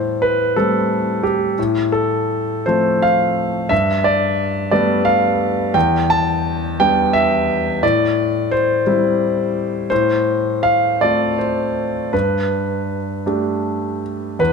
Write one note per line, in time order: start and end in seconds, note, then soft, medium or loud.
0.00 0.53 A2 soft
0.00 0.22 C5 medium
0.22 0.56 B4 medium
0.56 1.54 G3 soft
0.56 1.54 A3 soft
0.56 1.54 C4 soft
0.56 1.24 A4 medium
1.23 1.57 G4 medium
1.59 2.62 A2 soft
1.92 2.65 A4 medium
2.66 3.68 F3 soft
2.66 3.68 A3 soft
2.66 3.68 C4 soft
2.66 3.02 C5 medium
3.02 3.71 F5 medium
3.69 4.69 G2 medium
3.69 4.04 E5 medium
4.04 4.70 D5 medium
4.71 5.71 G3 soft
4.71 5.70 A3 soft
4.71 5.71 B3 soft
4.71 5.06 D5 medium
5.05 5.74 F5 medium
5.74 6.75 E2 medium
5.74 6.09 G5 medium
6.10 6.79 A5 medium
6.80 7.79 G3 soft
6.80 7.79 B3 soft
6.80 7.79 D4 soft
6.80 7.13 G5 medium
7.13 7.82 E5 medium
7.83 8.83 A2 medium
7.83 8.52 D5 medium
8.52 8.86 C5 medium
8.87 9.87 G3 soft
8.87 9.87 C4 soft
8.87 9.88 E4 soft
9.90 10.97 A2 medium
9.90 10.63 C5 medium
10.63 11.00 F5 medium
11.01 12.10 A3 soft
11.01 12.10 C4 soft
11.01 12.11 F4 soft
11.01 11.38 D5 medium
11.38 12.14 C5 soft
12.13 13.22 G2 soft
12.13 14.00 B4 medium
13.26 14.35 A3 soft
13.26 14.36 D4 soft
13.26 14.36 G4 soft
14.39 14.53 E2 soft
14.39 14.53 B4 medium